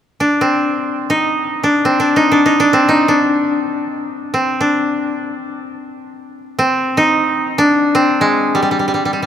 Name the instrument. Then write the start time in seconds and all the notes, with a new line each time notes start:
koto
0.20 D4
0.41 C4
1.10 D#4
1.64 D4
1.85 C4
2.00 D4
2.16 D#4
2.32 D4
2.46 D#4
2.60 D4
2.73 C4
2.89 D#4
3.08 D4
4.34 C4
4.61 D4
6.59 C4
6.97 D#4
7.58 D4
7.95 C4
8.21 G#3
8.55 G3
8.62 G3
8.71 G3
8.79 G3
8.88 G3
8.94 G3
9.05 G3
9.13 G3
9.22 G3